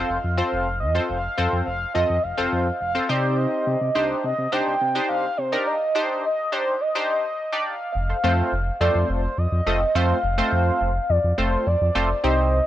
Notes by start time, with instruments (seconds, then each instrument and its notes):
Already playing: analog polysynth C4 F4 A4 C5, soft synth lead F5
0.09 sub bass F1
0.24 sub bass F2
0.37 analog polysynth C4 F4 A4 C5
0.52 sub bass F1, soft synth lead F5
0.80 sub bass F2, soft synth lead D#5
0.95 analog polysynth C4 F4 A4 C5
1.08 sub bass F1, soft synth lead F5
1.38 sub bass F2, analog polysynth C4 F4 A4 C5
1.53 sub bass F2
1.66 sub bass F1, soft synth lead F5
1.94 sub bass F2, analog polysynth C4 F4 A4 D#5, soft synth lead D#5
2.09 sub bass F2
2.23 sub bass F1, soft synth lead F5
2.38 sub bass F1, analog polysynth C4 F4 A4 C5
2.52 sub bass F2
2.80 sub bass F1, soft synth lead F5
2.95 analog polysynth C4 F4 A4 C5
3.09 sub bass C3, analog polysynth C4 D#4 G4 C5, soft synth lead D5
3.37 soft synth lead D#5
3.67 sub bass C3
3.81 sub bass C3
3.94 sub bass C2, analog polysynth D4 D#4 G4 C5, soft synth lead D#5
4.23 sub bass C3, soft synth lead D#5
4.38 sub bass C3
4.52 sub bass C2, analog polysynth D4 D#4 G4 C5, soft synth lead G5
4.67 sub bass C2
4.81 sub bass C3
4.95 analog polysynth D4 D#4 G4 C5
5.09 sub bass C2, soft synth lead F5
5.37 sub bass C3, soft synth lead C5
5.52 analog polysynth D4 D#4 G4 A#4
5.66 soft synth lead D#5
5.95 analog polysynth D4 D#4 G4 C5
6.23 soft synth lead D#5
6.52 analog polysynth D4 D#4 G4 C5, soft synth lead C5
6.81 soft synth lead D#5
6.95 analog polysynth D4 D#4 G4 C5
7.09 soft synth lead D#5
7.52 analog polysynth D4 D#4 G4 D5
7.67 soft synth lead F5
7.95 sub bass F1
8.09 analog polysynth A4 C5
8.24 sub bass F2, analog polysynth A3 C4 F4 A4 C5
8.52 sub bass F1
8.81 sub bass F2, analog polysynth A3 C4 F4 A4 C5, soft synth lead D5
8.95 sub bass F2
9.09 sub bass F1, soft synth lead C5
9.38 sub bass F2, soft synth lead D#5
9.52 sub bass F2
9.66 sub bass F1, analog polysynth A3 C4 F4 A4 D#5
9.95 sub bass F2, analog polysynth A3 C4 F4 A4 C5, soft synth lead F5
10.23 sub bass F1
10.38 analog polysynth A3 C4 F4 A4 C5
10.52 sub bass F2
10.81 sub bass F1
11.09 sub bass F2, soft synth lead D5
11.24 sub bass F2
11.38 sub bass F1, analog polysynth A3 C4 F4 A4 C5, soft synth lead C5
11.66 sub bass F2, soft synth lead D5
11.81 sub bass F2
11.95 sub bass F1, analog polysynth A3 C4 F4 A4 C5
12.24 sub bass C2, analog polysynth C4 D#4 G4 C5, soft synth lead D#5